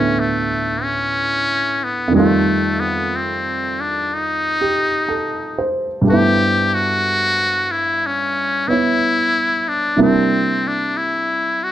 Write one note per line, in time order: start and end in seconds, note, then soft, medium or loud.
0.00 2.14 D2 soft
0.00 2.15 A2 soft
0.00 2.14 D3 soft
0.00 2.14 B3 soft
0.00 0.21 C#4 medium
0.00 2.16 E4 soft
0.00 2.15 F#4 soft
0.00 2.15 C#5 soft
0.20 0.84 A3 medium
0.83 1.85 C#4 medium
1.84 2.15 B3 medium
2.08 6.02 F2 soft
2.08 6.04 D#3 soft
2.14 6.03 G3 soft
2.14 2.81 A3 medium
2.14 6.06 A3 soft
2.20 6.08 F4 medium
2.80 3.17 B3 medium
3.16 3.82 C4 medium
3.80 4.15 D4 medium
4.14 5.74 D#4 medium
4.61 5.29 G4 soft
5.09 5.85 A4 soft
5.58 6.27 C5 soft
6.02 9.95 G2 soft
6.02 9.96 G3 soft
6.07 9.98 A3 soft
6.07 8.67 B3 soft
6.07 6.76 G4 medium
6.13 8.71 E4 soft
6.74 7.73 F#4 medium
7.71 8.08 E4 medium
8.06 8.70 C#4 medium
8.68 9.98 B3 soft
8.68 9.70 E4 medium
8.68 9.99 C#5 soft
8.72 9.97 E4 soft
9.68 9.99 D4 medium
9.96 11.72 C3 soft
9.96 11.72 G3 soft
9.96 11.72 A#3 soft
9.96 11.72 D4 soft
9.96 11.72 E4 soft
10.02 10.69 C4 medium
10.67 10.99 D4 medium
10.97 11.65 E4 medium
11.64 11.72 F#4 medium